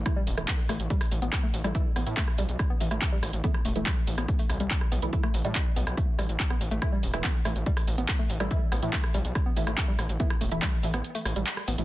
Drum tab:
HH |x-oxx-oxxooxx-ox|x-oxx-oxx-oxx-ox|x-oxx-oxxooxx-ox|x-oxx-oxx-oxx-ox|
CP |----x-------x---|----x-------x---|----x-------x---|----x-------x---|
SD |r--r--r--r--r--r|--r--r--r--r--r-|-r--r--r--r--r--|-r--r--r--r--r--|
BD |o---o---o---o---|o---o---o---o---|o---o---o---o---|o---o---o---o---|

HH |x-oxx-oxxooxx-ox|x-oxx-oxx-oxx-ox|x-oxx-oxxooxx-ox|
CP |----x-------x---|----x-------x---|----x-------x---|
SD |r--r--r--r--r--r|--r--r--r--r--r-|-r--r--r--r--r--|
BD |o---o---o---o---|o---o---o---o---|o---o-----------|